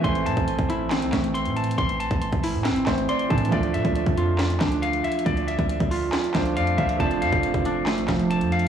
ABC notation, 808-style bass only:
X:1
M:4/4
L:1/16
Q:1/4=138
K:Am
V:1 name="808-style bass" clef=bass
A,,,2 A,, A,,,2 A,,,4 C,, A,,,3 A,,3 | A,,,3 A,,,2 A,,,2 A,,3/2 A,,,3/2 A,,,2 z2 A,,2 | D,,2 A,, D,,2 F,,4- F,, D,,4 z2 | D,,3 D,,2 D,,3 z2 D,,2 F,,2 D,,2 |
F,,,2 F,, F,,,2 F,,,4 A,,, F,,,3 F,,3 |]